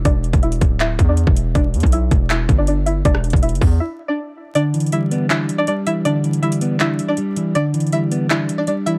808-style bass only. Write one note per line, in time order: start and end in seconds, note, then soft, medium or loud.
0.05 0.32 E1 loud
0.33 0.60 E1 loud
0.61 0.97 D1 loud
0.99 1.26 E2 loud
1.27 1.54 E1 loud
1.55 1.76 E1 loud
1.74 1.83 E2 loud
1.83 2.10 B1 loud
2.11 2.47 E1 loud
2.49 3.03 G1 loud
3.05 3.32 E1 loud
3.33 3.54 E1 loud
3.52 3.61 F#1 loud
3.61 3.79 E2 loud